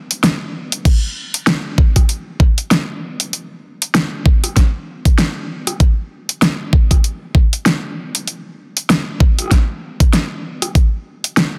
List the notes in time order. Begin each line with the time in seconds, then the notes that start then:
0.11 closed hi-hat
0.24 snare, closed hi-hat
0.72 closed hi-hat
0.85 kick, closed hi-hat, crash
1.34 closed hi-hat
1.47 snare, closed hi-hat
1.78 kick
1.96 kick, cross-stick, closed hi-hat
2.09 closed hi-hat
2.40 kick
2.58 closed hi-hat
2.71 snare, closed hi-hat
3.20 closed hi-hat
3.33 closed hi-hat
3.82 closed hi-hat
3.95 snare, closed hi-hat
4.26 kick
4.44 cross-stick, closed hi-hat
4.56 kick, snare, closed hi-hat
5.05 kick, closed hi-hat
5.18 snare, closed hi-hat
5.67 cross-stick, closed hi-hat
5.80 kick, closed hi-hat
6.29 closed hi-hat
6.42 snare, closed hi-hat
6.73 kick
6.91 kick, cross-stick, closed hi-hat
7.04 closed hi-hat
7.35 kick
7.53 closed hi-hat
7.66 snare, closed hi-hat
8.15 closed hi-hat
8.28 closed hi-hat
8.77 closed hi-hat
8.90 snare, closed hi-hat
9.20 kick
9.39 cross-stick, closed hi-hat
9.40 cross-stick
9.42 cross-stick
9.44 cross-stick
9.46 cross-stick
9.48 cross-stick
9.50 kick, cross-stick, snare, closed hi-hat
10.00 kick, closed hi-hat
10.13 snare, closed hi-hat
10.62 cross-stick, closed hi-hat
10.75 kick, closed hi-hat
11.24 closed hi-hat
11.37 snare, closed hi-hat